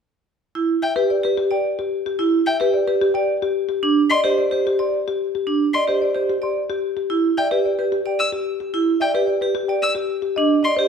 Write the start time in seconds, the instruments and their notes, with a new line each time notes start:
0.55 vibraphone E4
0.82 marimba E5, violin G5
0.96 vibraphone G4, marimba B4
1.10 marimba D5
1.23 vibraphone G4, marimba B4
1.38 marimba G4
1.51 vibraphone D5, marimba G5
1.79 marimba G4
2.06 marimba G4
2.19 vibraphone E4
2.46 marimba E5, violin G5
2.60 vibraphone G4, marimba B4
2.74 marimba D5
2.88 vibraphone G4, marimba B4
3.01 marimba G4
3.14 vibraphone D5, marimba G5
3.42 marimba G4
3.69 marimba G4
3.83 vibraphone D4
4.10 vibraphone D5, marimba D#5, violin C6
4.24 vibraphone G4, marimba C5
4.38 marimba D5
4.51 vibraphone G4, marimba C5
4.67 marimba G4
4.79 vibraphone D5, marimba C6
5.08 marimba G4
5.35 marimba G4
5.47 vibraphone D4
5.74 vibraphone D5, marimba D#5, violin C6
5.88 vibraphone G4, marimba C5
6.02 marimba D5
6.15 vibraphone G4, marimba C5
6.30 marimba G4
6.42 vibraphone D5, marimba C6
6.70 marimba G4
6.97 marimba G4
7.10 vibraphone E4
7.37 vibraphone D5, marimba E5, violin G5
7.51 vibraphone G4, marimba B4
7.66 marimba D5
7.79 vibraphone G4, marimba B4
7.92 marimba G4
8.06 vibraphone D5, marimba G5
8.19 violin E6
8.32 marimba G4
8.60 marimba G4
8.74 vibraphone E4
9.00 vibraphone D5, marimba E5, violin G5
9.14 vibraphone G4, marimba B4
9.27 marimba D5
9.41 vibraphone G4, marimba B4
9.55 marimba G4
9.68 vibraphone D5, marimba G5
9.82 violin E6
9.95 marimba G4
10.22 marimba G4
10.36 vibraphone D4, marimba D#5
10.63 vibraphone D5, marimba D#5, violin C6
10.77 vibraphone G4, marimba C5